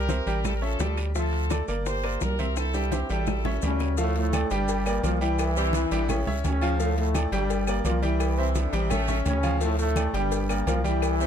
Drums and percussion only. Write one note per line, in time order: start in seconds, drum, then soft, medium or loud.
0.09 high bongo medium
0.09 high conga loud
0.09 high timbale medium
0.09 low timbale medium
0.09 short guiro medium
0.09 maracas medium
0.27 high bongo soft
0.27 high conga soft
0.27 high timbale medium
0.27 short guiro medium
0.27 maracas soft
0.44 high bongo medium
0.44 high conga soft
0.44 low conga medium
0.44 high timbale loud
0.44 long guiro medium
0.44 claves medium
0.44 maracas medium
0.62 high conga soft
0.80 high bongo medium
0.80 low bongo medium
0.80 high conga medium
0.80 high timbale medium
0.80 low timbale medium
0.80 short guiro medium
0.80 maracas medium
0.97 high bongo soft
0.97 high timbale medium
0.97 short guiro medium
0.97 claves medium
0.97 maracas soft
1.15 high bongo medium
1.15 high conga soft
1.15 long guiro medium
1.15 maracas medium
1.33 high conga soft
1.33 high timbale medium
1.50 high bongo medium
1.50 high conga medium
1.50 high timbale medium
1.50 low timbale medium
1.50 short guiro medium
1.50 claves medium
1.50 maracas medium
1.68 high conga soft
1.68 short guiro medium
1.68 maracas soft
1.86 high bongo medium
1.86 high conga soft
1.86 high timbale medium
1.86 long guiro medium
1.86 maracas medium
2.04 high conga soft
2.04 high timbale medium
2.04 claves medium
2.21 high bongo medium
2.21 low bongo medium
2.21 high conga medium
2.21 low timbale medium
2.21 short guiro medium
2.21 maracas medium
2.39 high conga medium
2.39 high timbale medium
2.39 short guiro medium
2.39 maracas soft
2.56 high bongo medium
2.56 high conga soft
2.56 high timbale medium
2.56 long guiro medium
2.56 claves medium
2.56 maracas medium
2.74 high bongo soft
2.74 high conga soft
2.74 high timbale medium
2.74 maracas medium
2.92 high bongo medium
2.92 high conga medium
2.92 high timbale medium
2.92 short guiro medium
2.92 maracas medium
3.09 high bongo soft
3.09 high conga soft
3.09 low timbale medium
3.09 short guiro medium
3.09 maracas soft
3.26 high bongo medium
3.26 high conga soft
3.26 low conga medium
3.26 low timbale medium
3.26 long guiro medium
3.26 claves medium
3.26 maracas medium
3.45 high bongo medium
3.45 high conga soft
3.45 low conga medium
3.45 low timbale medium
3.62 low bongo medium
3.62 high conga medium
3.62 low timbale medium
3.62 short guiro medium
3.62 maracas medium
3.79 low bongo medium
3.79 low timbale medium
3.79 short guiro medium
3.79 claves medium
3.79 maracas soft
3.97 cowbell loud
3.97 high conga soft
3.97 long guiro medium
3.97 maracas medium
4.16 cowbell medium
4.16 high conga soft
4.33 cowbell medium
4.33 high conga loud
4.33 low timbale medium
4.33 low agogo loud
4.33 short guiro medium
4.33 claves medium
4.33 maracas medium
4.50 cowbell medium
4.50 high conga soft
4.50 short guiro medium
4.50 maracas soft
4.68 cowbell loud
4.68 high conga soft
4.68 low agogo medium
4.68 long guiro medium
4.68 maracas medium
4.86 high conga soft
4.86 low agogo loud
4.86 claves medium
4.86 maracas medium
5.04 cowbell medium
5.04 high conga medium
5.04 low timbale medium
5.04 low agogo medium
5.04 short guiro medium
5.04 maracas medium
5.21 short guiro medium
5.21 maracas soft
5.39 cowbell loud
5.39 high conga soft
5.39 low agogo loud
5.39 long guiro medium
5.39 claves medium
5.39 maracas medium
5.56 high conga soft
5.56 maracas medium
5.73 cowbell medium
5.73 high conga medium
5.73 low timbale medium
5.73 low agogo medium
5.73 short guiro medium
5.73 maracas medium
5.91 cowbell medium
5.91 high conga soft
5.91 low agogo medium
5.91 short guiro medium
5.91 maracas soft
6.09 cowbell loud
6.09 high conga soft
6.09 low conga medium
6.09 low agogo loud
6.09 long guiro medium
6.09 claves medium
6.09 maracas medium
6.27 high conga soft
6.27 low conga medium
6.44 cowbell medium
6.44 high conga medium
6.44 low timbale medium
6.44 low agogo medium
6.44 short guiro medium
6.44 maracas medium
6.61 low agogo loud
6.61 short guiro medium
6.61 claves medium
6.61 maracas soft
6.80 cowbell loud
6.80 high conga soft
6.80 long guiro medium
6.80 maracas medium
6.97 cowbell medium
6.97 high conga soft
7.14 cowbell medium
7.14 high conga loud
7.14 low timbale medium
7.14 low agogo loud
7.14 short guiro medium
7.14 claves medium
7.14 maracas medium
7.32 cowbell medium
7.32 high conga soft
7.32 short guiro medium
7.32 maracas soft
7.50 cowbell loud
7.50 high conga soft
7.50 low agogo medium
7.50 long guiro medium
7.50 maracas medium
7.67 high conga soft
7.67 low agogo loud
7.67 claves medium
7.67 maracas medium
7.85 cowbell medium
7.85 high conga medium
7.85 low timbale medium
7.85 low agogo medium
7.85 short guiro medium
7.85 maracas medium
8.03 high conga medium
8.03 short guiro medium
8.03 maracas soft
8.20 cowbell loud
8.20 high conga soft
8.20 low agogo loud
8.20 long guiro medium
8.20 claves medium
8.20 maracas medium
8.38 high conga soft
8.55 cowbell medium
8.55 high conga medium
8.55 low timbale medium
8.55 low agogo medium
8.55 short guiro medium
8.55 maracas medium
8.73 cowbell medium
8.73 high conga soft
8.73 low agogo medium
8.73 short guiro medium
8.73 maracas soft
8.90 cowbell loud
8.90 high conga soft
8.90 low conga medium
8.90 low agogo loud
8.90 long guiro medium
8.90 claves medium
8.90 maracas medium
9.08 high conga soft
9.08 low conga medium
9.08 maracas medium
9.26 cowbell medium
9.26 high conga medium
9.26 low timbale medium
9.26 low agogo medium
9.26 short guiro medium
9.26 maracas medium
9.43 high conga medium
9.43 low agogo loud
9.43 short guiro medium
9.43 claves medium
9.43 maracas soft
9.61 cowbell loud
9.61 high conga soft
9.61 long guiro medium
9.61 maracas medium
9.79 cowbell medium
9.79 high conga soft
9.79 maracas medium
9.96 cowbell medium
9.96 high conga medium
9.96 low timbale medium
9.96 low agogo loud
9.96 short guiro medium
9.96 claves medium
9.96 maracas medium
10.14 cowbell medium
10.14 high conga soft
10.14 short guiro medium
10.14 maracas soft
10.32 cowbell loud
10.32 high conga soft
10.32 low agogo medium
10.32 long guiro medium
10.32 maracas medium
10.49 high conga soft
10.49 low agogo loud
10.49 claves medium
10.49 maracas medium
10.67 cowbell medium
10.67 high conga medium
10.67 low timbale medium
10.67 low agogo medium
10.67 short guiro medium
10.67 maracas medium
10.84 high conga medium
10.84 short guiro medium
10.84 maracas soft
11.02 cowbell loud
11.02 high conga soft
11.02 low agogo loud
11.02 long guiro medium
11.02 claves medium
11.02 maracas medium
11.20 high conga soft
11.20 maracas medium